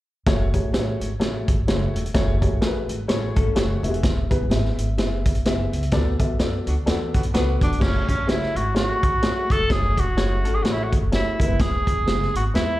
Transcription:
0.26 upright bass F#1, upright piano A3 F#4 G#4 C#5, kick, snare, closed hi-hat
0.54 upright piano A3 F#4 G#4 C#5, kick, closed hi-hat
0.63 upright bass A1
0.72 upright bass A1, upright piano A3 F#4 G#4 B4, snare, closed hi-hat
0.80 upright piano C#5
1.00 upright bass G#1, closed hi-hat
1.20 upright bass A1, upright piano A3 F#4 G#4 C#5, snare, closed hi-hat
1.48 upright bass G#1, kick, closed hi-hat
1.67 upright bass F#1, upright piano G#3 F#4 G#4 C#5, snare, closed hi-hat
1.73 upright piano A3
1.94 upright bass E1, closed hi-hat
2.06 closed hi-hat
2.14 upright bass F#1, upright piano A3 F#4 G#4 C#5, kick, snare, closed hi-hat
2.41 upright piano A3 F#4 G#4 C#5, kick, closed hi-hat
2.52 upright bass A1
2.61 upright bass A1, upright piano A3 F#4 G#4 A#4, snare, closed hi-hat
2.67 upright piano B4
2.89 upright bass G#1, closed hi-hat
3.08 upright bass A1, upright piano G#3 F#4 G#4 C#5, hollow-body jazz guitar E4 C#5, snare, closed hi-hat
3.13 upright piano A3
3.36 upright bass G#1, hollow-body jazz guitar C#4 A4, kick, closed hi-hat
3.55 upright bass F#1, upright piano A3 F#4 G#4 C#5, hollow-body jazz guitar A3 F#4, snare, closed hi-hat
3.83 upright bass E1, upright piano B3 E4 F#4 E5, closed hi-hat
3.89 upright piano G#4
3.94 closed hi-hat
4.03 kick, snare, closed hi-hat
4.30 upright piano B3 E4 G#4 B4, kick, closed hi-hat
4.41 upright bass E1
4.50 upright bass G#1, upright piano B3 E4 G#4 E5, snare, closed hi-hat
4.65 snare
4.78 upright bass G#1, closed hi-hat
4.98 upright bass F#1, upright piano B3 E4 G#4 E5, snare, closed hi-hat
5.25 upright bass G#1, kick, closed hi-hat
5.35 closed hi-hat
5.45 upright bass F#1, upright piano B3 E4 G#4 E5, snare, closed hi-hat
5.73 upright bass C#2, closed hi-hat
5.83 closed hi-hat
5.91 upright bass D2, upright piano B3 F#4 A4 D5, kick, snare, closed hi-hat
6.19 upright piano B3 F#4 A4 E5, kick, closed hi-hat
6.30 upright bass F#2
6.39 upright bass F#2, upright piano B3 F#4 A4 D5, snare, closed hi-hat
6.66 upright bass D2, saxophone section B3 D4 F#4, closed hi-hat
6.86 upright bass E2, upright piano B3 F#4 A4 D5, saxophone section B3 D4 F#4, snare, closed hi-hat
7.14 upright bass D2, saxophone section B3 D4 F#4, kick, closed hi-hat
7.23 closed hi-hat
7.34 upright bass C#2, upright piano B3 F#4 A4 B4, saxophone section B3 D4 F#4, snare, closed hi-hat
7.61 upright bass E1, tenor saxophone D4, kick, closed hi-hat
7.72 closed hi-hat
7.80 upright bass F#1, upright piano A3 F#4 G#4 C#5, tenor saxophone C#4, kick, snare, crash
8.09 upright bass E1, tenor saxophone C#4, kick, closed hi-hat
8.27 upright bass F#1, upright piano A3 F#4 G#4 B4, tenor saxophone E4, snare, closed hi-hat
8.33 upright piano C#5
8.43 snare
8.55 upright bass G#1, tenor saxophone F#4, closed hi-hat
8.74 upright piano A3 F#4 G#4 C#5, tenor saxophone F#4, snare, closed hi-hat
9.03 upright bass A1, kick, closed hi-hat
9.22 upright piano A3 F#4 G#4 C#5, snare, closed hi-hat
9.50 upright bass F#1, tenor saxophone A4, kick, closed hi-hat
9.59 upright bass E1
9.69 upright bass F#1, upright piano A3 F#4 G#4 C#5, tenor saxophone G#4, kick, snare, closed hi-hat
9.97 upright bass E1, tenor saxophone F#4, kick, closed hi-hat
10.16 upright bass F#1, upright piano A3 F#4 G#4 C#5, hollow-body jazz guitar E4 C#5, snare, closed hi-hat
10.44 upright bass G#1, hollow-body jazz guitar C#4 A4, closed hi-hat
10.55 tenor saxophone G#4
10.63 upright bass A1, upright piano A3 F#4 G#4 C5, hollow-body jazz guitar A3 F#4, tenor saxophone F#4, snare, closed hi-hat
10.70 tenor saxophone E4, upright piano C#5
10.84 tenor saxophone F#4
10.92 kick, closed hi-hat
11.01 upright bass F#1
11.12 upright piano A3 F#4 G#4 C#5, tenor saxophone E4, snare, closed hi-hat
11.39 upright bass E1, upright piano G#3 B3 E4 A#4, tenor saxophone E4, kick, closed hi-hat
11.46 upright bass F#1, upright piano B4
11.60 upright bass E1, tenor saxophone G#4, kick, snare, closed hi-hat
11.87 upright bass E1, kick, closed hi-hat
12.06 upright bass F#1, upright piano G#3 B3 E4 G#4, snare, closed hi-hat
12.22 snare
12.34 upright bass G#1, tenor saxophone F#4, closed hi-hat
12.54 upright bass E2, upright piano G#3 B3 E4 B4, tenor saxophone E4, snare, closed hi-hat

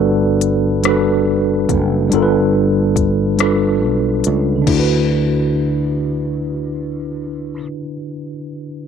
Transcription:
Already playing: fretless electric bass G1, tine electric piano G3 D4 F#4 A4 B4 D5
0.41 closed hi-hat
0.83 tine electric piano G3 D4 F#4, cross-stick, closed hi-hat
0.87 tine electric piano A4 B4
1.69 fretless electric bass F#1, kick, closed hi-hat
2.10 fretless electric bass G1, tine electric piano G3 D4 F4, closed hi-hat
2.15 tine electric piano A4 A#4
2.23 tine electric piano B4
2.96 kick, closed hi-hat
3.37 tine electric piano G3 D4 F4, cross-stick, closed hi-hat
3.42 tine electric piano A4 B4
3.84 fretless electric bass B1
4.24 fretless electric bass C#2, closed hi-hat
4.56 tine electric piano D3
4.62 tine electric piano D4
4.67 fretless electric bass D2, tine electric piano E4, kick, crash
4.73 tine electric piano F#4
4.80 tine electric piano B4

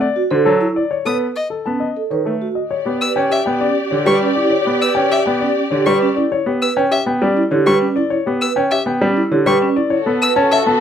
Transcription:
0.01 grand piano D5
0.16 vibraphone F#4
0.31 grand piano D3 C5, vibraphone A4
0.45 grand piano F#3 A4
0.61 vibraphone E4
0.76 grand piano D5
0.91 grand piano C#5
1.05 grand piano B3 A4, vibraphone B4, violin D#6
1.36 violin D#5
1.50 grand piano A4
1.66 grand piano B3 A5, vibraphone C#4
1.80 grand piano D#5
1.97 vibraphone A4
2.11 grand piano D#3 C#5, vibraphone B4
2.25 grand piano A3 A4
2.41 vibraphone F#4
2.55 grand piano D#5
2.71 clarinet G4, string section G4 D5, grand piano C#5
2.85 grand piano B3 G4
3.01 vibraphone B4, violin E6
3.16 grand piano C#4 G5
3.30 grand piano G4, violin E5
3.46 grand piano B3 G5
3.61 vibraphone C#4, grand piano D5
3.91 grand piano D3 C#5, vibraphone G4
4.05 grand piano G3 G4, vibraphone B4, violin C#6
4.21 vibraphone C#4
4.35 vibraphone E4, grand piano D5
4.50 grand piano C#5
4.65 grand piano B3 G4
4.82 vibraphone B4, violin E6
4.95 grand piano C#4 G5
5.10 grand piano G4, violin E5
5.26 grand piano B3 G5
5.40 vibraphone C#4, grand piano D5
5.71 grand piano D3 C#5, vibraphone G4
5.86 grand piano G3 G4, vibraphone B4, violin C#6
6.02 vibraphone C#4
6.16 vibraphone E4, grand piano D5
6.32 grand piano C#5
6.46 grand piano B3 G4
6.62 vibraphone B4, violin E6
6.76 grand piano C#4 G5
6.91 grand piano G4, violin E5
7.06 grand piano B3 G5
7.22 grand piano G3 D5, vibraphone C#4
7.37 vibraphone E4
7.51 grand piano D3 C#5, vibraphone G4
7.66 grand piano G3 G4, vibraphone B4, violin C#6
7.82 vibraphone C#4
7.96 vibraphone E4, grand piano D5
8.10 grand piano C#5
8.26 grand piano B3 G4
8.41 vibraphone B4, violin E6
8.56 grand piano C#4 G5
8.71 grand piano G4, violin E5
8.86 grand piano B3 G5
9.01 grand piano G3 D5, vibraphone C#4
9.17 vibraphone E4
9.31 grand piano D3 C#5, vibraphone G4
9.46 grand piano G3 G4, vibraphone B4, violin C#6
9.62 vibraphone C#4
9.76 vibraphone E4, grand piano D5
9.90 string section F#4 A4, clarinet A4, grand piano C#5
10.06 grand piano B3 A4
10.22 vibraphone B4, violin E6
10.36 grand piano C#4 A5
10.52 grand piano A4, violin E5
10.66 grand piano B3 A5

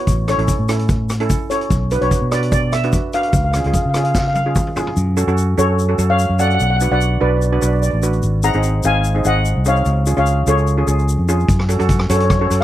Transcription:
Already playing: steel pan C#5
0.07 fingered electric bass A1, kick, closed hi-hat, shaker
0.28 steel pan C#4 E4 A4 C#5, cross-stick, closed hi-hat, shaker
0.38 fingered electric bass A1, steel pan C#4 E4 A4, closed hi-hat
0.48 kick, closed hi-hat, shaker
0.59 fingered electric bass A2
0.69 steel pan C#4 E4 A4, cross-stick, closed hi-hat, shaker
0.79 closed hi-hat
0.89 kick, closed hi-hat, shaker
1.09 cross-stick, closed hi-hat, shaker
1.20 steel pan C#4 E4 A4, closed hi-hat
1.30 kick, closed hi-hat, shaker
1.50 steel pan C#4 E4 A4 C#5, closed hi-hat, shaker
1.61 closed hi-hat
1.70 fingered electric bass B1, kick, closed hi-hat, shaker
1.91 steel pan D4 F#4 B4, closed hi-hat, shaker
2.01 fingered electric bass B1, steel pan D4 F#4 B4 C#5, closed hi-hat
2.11 kick, closed hi-hat, shaker
2.22 fingered electric bass B2
2.32 steel pan D4 F#4 B4 D5, cross-stick, closed hi-hat, shaker
2.43 closed hi-hat
2.52 steel pan D5, kick, closed hi-hat, shaker
2.72 steel pan E5, cross-stick, closed hi-hat, shaker
2.83 steel pan D4 F#4 B4, closed hi-hat
2.93 kick, closed hi-hat, shaker
3.13 steel pan D4 F#4 B4 F5, closed hi-hat, shaker
3.22 steel pan F5, closed hi-hat
3.29 steel pan F5
3.33 fingered electric bass C#2, steel pan F5, kick, closed hi-hat, shaker
3.44 steel pan F5
3.52 steel pan F5, cross-stick, closed hi-hat, shaker
3.56 steel pan C#4 F4 G#4
3.60 steel pan F5
3.64 fingered electric bass C#2, steel pan C#4 F4 G#4 F5, closed hi-hat
3.73 steel pan F5, kick, closed hi-hat, shaker
3.82 fingered electric bass C#3, steel pan F5
3.89 steel pan F5
3.94 steel pan C#4 F4 G#4 F5, cross-stick, closed hi-hat, shaker
4.04 steel pan F5, closed hi-hat
4.11 steel pan F5, kick, snare, shaker
4.19 steel pan F5
4.28 steel pan F5
4.34 steel pan F5, high tom, shaker
4.46 steel pan C#4 F4 G#4
4.55 kick, mid tom, shaker
4.67 mid tom
4.76 steel pan C#4 F4 G#4, floor tom, shaker
4.87 floor tom
4.97 fingered electric bass F#2, shaker
5.17 steel pan C#4 F#4 A4, shaker
5.27 fingered electric bass F#2, steel pan C#4 F#4 A4, shaker
5.38 shaker
5.58 fingered electric bass F#2, steel pan C#4 F#4 A4 C#5, shaker
5.79 shaker
5.89 steel pan C#4 F#4 A4
5.98 fingered electric bass F#2, steel pan C#4 F#4 A4, shaker
6.10 steel pan C#5 F5
6.19 shaker
6.29 fingered electric bass F#2
6.39 steel pan C#4 F#4 A4 D5 F#5, shaker
6.48 steel pan F#5, shaker
6.55 steel pan F#5
6.60 fingered electric bass B1, steel pan F#5, shaker
6.70 steel pan F#5
6.77 steel pan F#5, shaker
6.81 steel pan D4 F#4 B4
6.91 fingered electric bass B1, steel pan D4 F#4 B4 D5 F#5
7.01 shaker
7.20 fingered electric bass B1, steel pan D4 F#4 B4 D5
7.30 steel pan D5
7.37 steel pan D5
7.42 steel pan D5, shaker
7.52 steel pan D4 F#4 B4 D5
7.61 fingered electric bass B1, steel pan D4 F#4 B4 D5, shaker
7.68 steel pan D5
7.75 steel pan D5
7.82 steel pan D5, shaker
7.91 fingered electric bass A1, steel pan D5
8.03 steel pan D4 F#4 B4, shaker
8.13 shaker
8.23 fingered electric bass G#1, shaker
8.43 steel pan C4 D#4 G#4 F#5 A#5, shaker
8.53 fingered electric bass G#1, steel pan C4 D#4 G#4, shaker
8.63 shaker
8.83 fingered electric bass G#1, steel pan C4 D#4 G#4 F5 G#5, shaker
9.04 shaker
9.15 steel pan C4 D#4 G#4
9.25 fingered electric bass G#1, steel pan C4 D#4 G#4 D#5 F#5, shaker
9.45 shaker
9.56 fingered electric bass C2
9.65 steel pan C4 D#4 G#4 C#5 F5, shaker
9.76 shaker
9.85 fingered electric bass C#2, shaker
10.06 steel pan C#4 F4 G#4, shaker
10.17 fingered electric bass C#2, steel pan C#4 F4 G#4 C#5 F5, shaker
10.26 shaker
10.47 fingered electric bass C#2, steel pan C#4 F4 G#4 A4 C#5, shaker
10.58 shaker
10.67 shaker
10.78 steel pan C#4 F4 G#4
10.87 fingered electric bass C#2, steel pan C#4 F4 G#4, shaker
10.99 shaker
11.09 shaker
11.18 fingered electric bass F2
11.29 steel pan C#4 F4 G#4, shaker
11.40 shaker
11.48 fingered electric bass F#2, kick, closed hi-hat, shaker
11.59 cross-stick
11.68 steel pan C#4 F#4 A4, closed hi-hat, shaker
11.79 fingered electric bass F#2, steel pan C#4 F#4 A4, closed hi-hat, shaker
11.89 kick, closed hi-hat, shaker
11.99 cross-stick
12.09 fingered electric bass F#2, steel pan C#4 F#4 A4 C#5, closed hi-hat, shaker
12.18 steel pan C#5, closed hi-hat
12.25 steel pan C#5
12.30 steel pan C#5, kick, cross-stick, closed hi-hat, shaker
12.40 steel pan C#4 F#4 A4 C#5
12.47 fingered electric bass F#2, steel pan C#4 F#4 C#5
12.51 steel pan A4, closed hi-hat, shaker
12.61 steel pan F5

